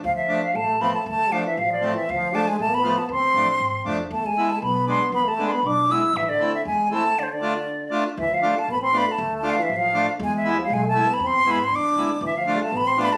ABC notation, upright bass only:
X:1
M:2/4
L:1/8
Q:1/4=118
K:none
V:1 name="Upright bass" clef=bass
D,, z A,,,2 | D,, z A,,,2 | D,, z A,,,2 | D,, A,,, ^G,,, F,,, |
E,, z B,,,2 | E,, z B,,,2 | A,,, z E,,2 | z4 |
D,,2 A,,,2 | D,,2 A,,,2 | E,,2 B,,,2 | E,, ^G,, E,, D,, |
D,,2 A,,,2 |]